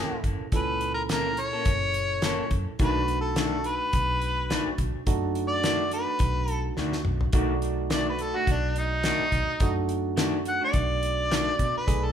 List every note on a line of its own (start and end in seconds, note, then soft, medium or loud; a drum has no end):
0.00 0.48 A#2 medium
0.00 0.14 E3 medium
0.00 0.15 A#3 medium
0.00 0.15 C#4 medium
0.00 0.49 C#4 medium
0.00 0.49 E4 medium
0.00 0.15 A4 medium
0.00 0.22 A4 medium
0.00 0.49 A4 medium
0.12 muted fingered electric bass stroke soft
0.24 0.38 F#1 medium
0.24 kick medium
0.24 closed hi-hat medium
0.41 muted fingered electric bass stroke soft
0.52 1.51 C#2 medium
0.52 2.76 A#2 medium
0.52 2.76 C#4 medium
0.52 2.76 E4 medium
0.52 2.77 A4 medium
0.52 0.90 B4 medium
0.52 kick loud
0.52 closed hi-hat medium
0.81 closed hi-hat medium
0.94 1.02 A#4 medium
1.09 1.28 E3 medium
1.09 1.28 A#3 medium
1.09 1.28 C#4 medium
1.09 1.29 A4 medium
1.09 1.42 A#4 medium
1.09 snare loud
1.09 closed hi-hat medium
1.37 2.53 C#5 loud
1.37 closed hi-hat medium
1.53 1.71 A#3 soft
1.53 1.70 C#4 soft
1.53 1.69 A4 soft
1.65 2.40 F#1 medium
1.65 kick loud
1.65 closed hi-hat medium
1.94 closed hi-hat medium
2.22 2.41 E3 medium
2.22 2.42 A#3 medium
2.22 2.42 C#4 medium
2.22 2.42 A4 medium
2.22 snare loud
2.22 closed hi-hat medium
2.51 2.65 F#2 medium
2.51 kick medium
2.51 closed hi-hat medium
2.79 3.78 B1 medium
2.79 2.98 D#3 medium
2.79 5.03 A3 medium
2.79 2.99 A3 medium
2.79 5.03 D4 soft
2.79 2.99 D4 medium
2.79 5.03 D#4 medium
2.79 5.03 F#4 medium
2.79 2.99 F#4 medium
2.79 kick loud
2.79 closed hi-hat medium
2.84 3.17 B4 loud
3.08 closed hi-hat medium
3.21 3.37 A4 medium
3.36 3.55 D#3 medium
3.36 3.56 A3 medium
3.36 3.56 D4 medium
3.36 3.56 F#4 medium
3.36 3.69 A4 medium
3.36 snare loud
3.36 closed hi-hat medium
3.64 4.80 B4 loud
3.64 closed hi-hat medium
3.93 4.56 B1 medium
3.93 kick loud
3.93 closed hi-hat medium
4.22 closed hi-hat medium
4.50 4.69 D#3 medium
4.50 4.69 A3 medium
4.50 4.69 D4 medium
4.50 4.69 F#4 medium
4.50 snare loud
4.50 closed hi-hat medium
4.67 muted fingered electric bass stroke soft
4.78 4.92 B1 medium
4.78 kick medium
4.78 closed hi-hat medium
4.95 muted fingered electric bass stroke soft
5.06 6.05 F#2 medium
5.06 7.30 A3 medium
5.06 7.30 D4 medium
5.06 7.30 D#4 medium
5.06 7.30 F#4 medium
5.06 kick loud
5.06 closed hi-hat medium
5.35 closed hi-hat medium
5.48 5.91 D5 loud
5.63 5.82 D#3 medium
5.63 5.82 A3 medium
5.63 5.83 D4 medium
5.63 5.83 F#4 medium
5.63 snare loud
5.63 closed hi-hat medium
5.91 6.51 B4 loud
5.91 closed hi-hat medium
6.19 6.70 B1 loud
6.19 kick loud
6.19 closed hi-hat medium
6.48 6.74 A4 loud
6.48 closed hi-hat medium
6.77 7.03 D2 medium
6.77 6.96 D#3 medium
6.77 6.96 A3 medium
6.77 6.96 D4 medium
6.77 6.97 F#4 medium
6.77 snare medium
6.93 snare medium
7.05 7.32 B1 medium
7.05 mid tom medium
7.21 floor tom medium
7.33 8.32 B1 medium
7.33 7.52 D#3 medium
7.33 9.57 A3 medium
7.33 7.52 A3 medium
7.33 7.53 D4 medium
7.33 9.57 D#4 medium
7.33 9.57 F#4 medium
7.33 7.53 F#4 medium
7.33 9.57 D5 medium
7.33 kick loud
7.33 closed hi-hat medium
7.62 closed hi-hat medium
7.90 8.09 D#3 medium
7.90 8.09 A3 medium
7.90 8.10 D4 medium
7.90 8.10 F#4 medium
7.90 8.07 D5 medium
7.90 snare loud
7.90 closed hi-hat medium
8.09 8.24 B4 medium
8.19 8.39 A4 medium
8.19 closed hi-hat medium
8.34 8.52 A3 soft
8.34 8.51 D4 soft
8.34 8.50 F#4 soft
8.34 8.48 F#4 medium
8.47 9.10 B1 medium
8.47 kick loud
8.47 closed hi-hat medium
8.51 8.77 D4 medium
8.76 9.87 D#4 loud
8.76 closed hi-hat medium
9.03 9.22 D#3 medium
9.03 9.23 A3 medium
9.03 9.23 D4 medium
9.03 9.23 F#4 medium
9.03 snare loud
9.03 closed hi-hat medium
9.20 muted fingered electric bass stroke soft
9.32 9.46 B1 medium
9.32 kick medium
9.32 closed hi-hat medium
9.60 10.59 F#2 medium
9.60 11.84 A3 medium
9.60 11.84 D4 medium
9.60 11.84 D#4 medium
9.60 11.85 F#4 medium
9.60 kick loud
9.60 closed hi-hat medium
9.89 closed hi-hat medium
10.17 10.36 D#3 medium
10.17 10.36 A3 medium
10.17 10.36 D4 loud
10.17 10.36 F#4 medium
10.17 snare loud
10.17 closed hi-hat medium
10.45 10.62 F#5 loud
10.45 closed hi-hat medium
10.61 10.79 A3 soft
10.61 10.78 D4 soft
10.61 10.77 F#4 soft
10.61 11.73 D5 loud
10.73 11.48 B1 loud
10.73 kick loud
10.73 closed hi-hat medium
11.03 closed hi-hat medium
11.31 11.49 D#3 medium
11.31 11.49 A3 medium
11.31 11.50 D4 medium
11.31 11.50 F#4 medium
11.31 snare loud
11.31 closed hi-hat medium
11.59 11.73 B2 medium
11.59 kick medium
11.59 closed hi-hat medium
11.77 12.07 B4 medium
11.87 12.12 B1 medium
11.87 12.12 A3 medium
11.87 12.12 D#4 medium
11.87 12.12 G#4 medium
11.87 12.12 D5 medium
11.87 kick loud
11.87 closed hi-hat medium
12.06 12.12 A4 medium